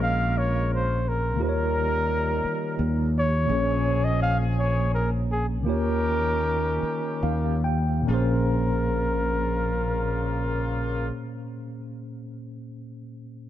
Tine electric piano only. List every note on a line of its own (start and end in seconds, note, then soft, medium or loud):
0.00 1.33 A#2 medium
0.00 1.33 A#3 medium
0.00 1.34 C#4 medium
0.00 1.35 G#4 medium
0.00 1.35 A#4 medium
1.36 3.43 D#3 medium
1.36 3.44 A#3 medium
1.36 3.45 F4 medium
1.40 3.45 G4 medium
1.40 1.46 C5 medium
1.49 3.50 C#5 medium
3.46 5.59 A#2 medium
3.46 5.60 A#3 medium
3.46 5.61 C#4 medium
3.50 5.61 G#4 medium
3.50 5.62 C#5 medium
5.63 8.02 D#3 medium
5.63 8.03 A#3 medium
5.63 8.04 F4 medium
5.68 8.04 G4 medium
5.68 8.05 C#5 medium
7.23 7.61 F5 medium
7.64 8.04 G5 medium
8.02 11.03 A#2 medium
8.02 11.06 A#3 medium
8.07 11.09 C#4 medium
8.07 11.12 G#4 medium
8.14 11.15 C5 medium